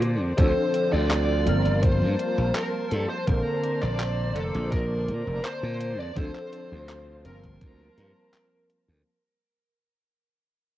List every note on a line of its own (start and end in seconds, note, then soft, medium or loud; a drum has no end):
0.00 0.21 A#2 medium
0.00 0.31 D3 medium
0.00 0.31 A#3 medium
0.00 0.36 A#3 medium
0.00 0.32 C4 medium
0.00 0.32 A#4 loud
0.00 0.36 C5 medium
0.00 0.36 D5 medium
0.00 0.35 A5 medium
0.00 closed hi-hat medium
0.21 0.34 F2 medium
0.37 0.52 D2 loud
0.37 1.46 D3 medium
0.37 1.39 F3 medium
0.37 1.46 C4 medium
0.37 1.40 C4 medium
0.37 1.40 D4 medium
0.37 3.24 F4 medium
0.37 1.41 A4 medium
0.37 0.93 C5 loud
0.37 kick loud
0.37 closed hi-hat medium
0.74 closed hi-hat medium
0.93 1.49 D2 medium
0.93 1.10 D5 loud
1.11 1.82 D5 loud
1.11 clap loud
1.11 closed hi-hat medium
1.45 1.61 G1 loud
1.45 3.20 F3 medium
1.45 3.26 G3 medium
1.45 3.20 A#3 medium
1.45 3.26 A#3 medium
1.45 3.21 C4 medium
1.45 3.21 A#4 loud
1.45 6.13 C5 medium
1.45 6.13 A5 medium
1.45 closed hi-hat medium
1.65 2.03 G1 medium
1.65 closed hi-hat soft
1.83 2.57 C5 loud
1.83 kick loud
1.83 closed hi-hat medium
2.02 2.15 G2 loud
2.19 closed hi-hat medium
2.38 2.51 A#1 loud
2.55 2.92 A#4 loud
2.55 clap loud
2.55 closed hi-hat medium
2.91 3.05 G2 loud
2.91 3.06 A4 loud
2.91 closed hi-hat medium
3.09 3.27 C5 medium
3.27 3.41 A#1 loud
3.27 6.09 D3 medium
3.27 6.14 A#3 medium
3.27 6.10 A#3 medium
3.27 6.10 C4 medium
3.27 3.84 A#4 loud
3.27 6.11 C5 loud
3.27 6.14 D5 medium
3.27 kick loud
3.27 closed hi-hat medium
3.63 closed hi-hat medium
3.81 4.36 A#1 medium
3.81 4.37 D5 loud
3.81 clap soft
3.99 clap loud
3.99 closed hi-hat medium
4.35 4.50 F1 loud
4.35 4.69 A4 medium
4.35 closed hi-hat medium
4.54 5.10 A#1 medium
4.54 closed hi-hat soft
4.71 5.44 A#4 medium
4.71 kick loud
4.71 closed hi-hat medium
5.08 5.22 A#2 medium
5.08 closed hi-hat medium
5.27 5.40 F1 medium
5.44 6.01 C5 loud
5.44 clap loud
5.44 closed hi-hat medium
5.63 5.99 A#2 loud
5.80 closed hi-hat medium
5.99 6.12 F2 loud
5.99 6.17 D5 loud
6.15 6.30 D2 loud
6.15 7.24 D3 medium
6.15 7.17 F3 medium
6.15 7.18 C4 medium
6.15 7.24 C4 medium
6.15 7.18 D4 medium
6.15 9.03 F4 medium
6.15 7.19 A4 medium
6.15 7.21 C5 loud
6.15 kick loud
6.15 closed hi-hat medium
6.35 clap soft
6.53 closed hi-hat medium
6.72 7.27 D2 medium
6.89 clap loud
6.89 closed hi-hat medium
7.24 7.39 G1 loud
7.24 8.98 F3 medium
7.24 9.04 G3 medium
7.24 9.04 A#3 medium
7.24 8.99 A#3 medium
7.24 8.99 C4 medium
7.24 8.66 A#4 medium
7.24 9.00 A#4 loud
7.24 9.04 C5 medium
7.24 9.04 A5 medium
7.24 closed hi-hat medium
7.43 7.57 G1 medium
7.43 kick medium
7.43 closed hi-hat soft
7.61 7.88 D2 medium
7.61 kick loud
7.61 closed hi-hat medium
7.98 8.11 G2 medium
7.98 closed hi-hat medium
8.34 clap loud
8.34 closed hi-hat medium
8.70 closed hi-hat medium
8.88 9.01 D2 loud